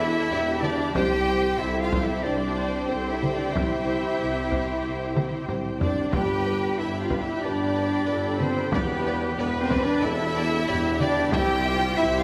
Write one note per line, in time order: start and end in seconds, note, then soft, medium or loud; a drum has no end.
0.00 0.22 E1 medium
0.00 0.22 E2 loud
0.00 0.91 D4 medium
0.00 0.60 E4 medium
0.00 0.63 E4 loud
0.00 0.91 G4 medium
0.00 0.30 A4 medium
0.00 0.62 E5 loud
0.00 0.63 E5 loud
0.00 0.91 G5 medium
0.00 0.91 B5 medium
0.29 0.87 E1 medium
0.29 0.87 E2 loud
0.29 0.95 G4 loud
0.29 0.39 D5 medium
0.60 0.94 D4 loud
0.60 0.95 D4 loud
0.60 0.94 D5 medium
0.60 0.95 D5 loud
0.60 0.72 D5 medium
0.60 taiko mid medium
0.93 1.51 C2 loud
0.93 1.51 C2 medium
0.93 6.13 C4 loud
0.93 6.09 G4 loud
0.93 1.58 G4 loud
0.93 1.59 G4 loud
0.93 6.13 C5 loud
0.93 1.26 C5 medium
0.93 1.03 C5 medium
0.93 6.09 G5 loud
0.93 1.61 G5 loud
0.93 1.58 G5 loud
0.93 taiko loud
1.27 1.59 C5 medium
1.27 1.36 C5 medium
1.59 2.16 C2 medium
1.59 2.17 C2 medium
1.59 1.81 E4 loud
1.59 2.24 A4 medium
1.59 1.67 C5 medium
1.59 1.80 E5 loud
1.59 1.82 E5 loud
1.80 2.02 F4 medium
1.80 2.03 F4 loud
1.80 2.05 F5 medium
1.80 2.02 F5 medium
1.92 2.00 C5 medium
1.92 taiko medium
2.03 2.24 E4 medium
2.03 2.26 E4 loud
2.03 2.24 E5 medium
2.23 2.82 C2 medium
2.23 2.73 C2 medium
2.23 2.88 D4 medium
2.23 2.90 D4 medium
2.23 2.57 G4 medium
2.23 2.31 C5 medium
2.23 2.87 D5 medium
2.23 2.66 D5 medium
2.56 2.64 C5 medium
2.56 2.89 C5 medium
2.88 3.46 C2 medium
2.88 3.47 C2 medium
2.88 3.11 C4 medium
2.88 3.54 A4 medium
2.88 2.96 C5 medium
2.88 3.10 C5 medium
3.10 3.32 E4 medium
3.10 3.33 E4 loud
3.10 3.32 E5 medium
3.22 3.30 C5 medium
3.22 taiko mid medium
3.32 3.54 D4 medium
3.32 3.55 D4 medium
3.32 3.54 D5 medium
3.32 3.55 D5 medium
3.52 4.11 C2 medium
3.52 4.12 C2 medium
3.52 5.45 E4 medium
3.52 5.46 E4 loud
3.52 5.77 G4 medium
3.52 3.60 C5 medium
3.52 5.48 E5 medium
3.52 taiko medium
3.84 3.92 C5 medium
4.17 4.76 C2 medium
4.17 4.77 C2 medium
4.17 4.25 C5 medium
4.48 4.56 C5 medium
4.48 taiko medium
4.80 5.41 C2 medium
4.80 4.88 C5 medium
4.84 5.41 C2 medium
5.16 5.24 C5 medium
5.16 taiko mid medium
5.48 6.06 C2 medium
5.48 5.57 C5 medium
5.48 taiko low-mid medium
5.78 6.09 D4 medium
5.78 6.11 D4 medium
5.78 5.90 C5 medium
5.78 6.10 D5 medium
5.78 6.15 D5 medium
5.78 taiko low medium
6.11 6.71 G1 medium
6.11 6.71 G2 medium
6.11 11.33 D4 medium
6.11 11.28 G4 medium
6.11 6.77 G4 medium
6.11 6.78 G4 medium
6.11 6.19 B4 medium
6.11 6.74 B4 medium
6.11 6.76 G5 medium
6.11 11.29 G5 medium
6.11 6.80 G5 medium
6.11 11.33 B5 medium
6.11 taiko loud
6.45 6.53 B4 medium
6.77 7.35 G1 medium
6.77 7.35 G2 medium
6.77 7.00 E4 medium
6.77 8.08 G4 medium
6.77 6.85 B4 medium
6.77 7.00 E5 medium
6.77 6.99 E5 medium
6.99 7.21 F4 medium
6.99 7.22 F4 medium
6.99 7.22 F5 medium
7.10 7.18 B4 medium
7.10 taiko medium
7.21 7.43 E4 medium
7.21 7.44 E5 medium
7.21 7.43 E5 medium
7.41 8.00 G1 medium
7.41 8.01 G2 medium
7.41 8.40 D4 loud
7.41 8.40 D4 medium
7.41 7.52 B4 medium
7.41 8.40 D5 medium
7.41 8.39 D5 medium
7.75 7.83 B4 medium
8.06 8.65 G1 medium
8.06 8.66 G2 medium
8.06 8.72 A4 medium
8.06 8.14 B4 medium
8.38 8.72 C4 medium
8.38 8.73 C4 medium
8.38 8.47 B4 medium
8.38 8.72 C5 medium
8.38 8.74 C5 medium
8.38 taiko mid medium
8.71 9.30 E1 medium
8.71 9.31 E2 medium
8.71 9.34 B3 medium
8.71 9.37 B3 medium
8.71 9.38 G4 medium
8.71 9.36 B4 medium
8.71 9.37 B4 medium
8.71 8.82 D5 medium
8.71 taiko loud
9.06 9.14 D5 medium
9.36 9.87 E1 medium
9.36 9.58 B3 loud
9.36 9.59 B3 medium
9.36 9.59 B4 medium
9.36 10.03 B4 loud
9.36 9.63 B4 medium
9.36 9.47 D5 medium
9.40 9.96 E2 medium
9.60 9.81 C4 loud
9.60 9.81 C4 medium
9.60 9.82 C5 medium
9.60 9.86 C5 medium
9.70 9.79 D5 medium
9.70 taiko medium
9.81 10.03 D4 medium
9.81 10.04 D4 loud
9.81 10.03 D5 loud
9.81 10.06 D5 loud
10.02 10.61 E1 medium
10.02 10.61 E2 loud
10.02 11.00 E4 loud
10.02 11.01 E4 loud
10.02 10.69 A4 loud
10.02 10.10 D5 medium
10.02 11.00 E5 loud
10.36 10.44 D5 medium
10.68 11.25 E1 loud
10.68 11.26 E2 loud
10.68 11.33 G4 loud
10.68 10.76 D5 medium
11.00 11.32 D4 loud
11.00 11.33 D4 loud
11.00 11.33 D5 loud
11.00 11.10 D5 medium
11.00 taiko mid medium
11.32 11.90 C2 loud
11.32 11.66 E4 medium
11.32 11.98 G4 loud
11.32 12.23 G4 loud
11.32 11.99 G4 loud
11.32 12.23 C5 loud
11.32 11.41 E5 loud
11.32 11.98 G5 loud
11.32 12.23 G5 loud
11.32 11.97 G5 loud
11.32 taiko loud
11.64 11.99 F4 loud
11.64 11.72 E5 medium
11.95 12.23 C2 loud
11.95 12.18 E4 loud
11.95 12.19 E4 loud
11.95 12.23 G4 loud
11.95 12.16 E5 loud
11.95 12.05 E5 medium
11.95 12.20 E5 loud
12.17 12.23 F4 loud
12.17 12.23 F5 loud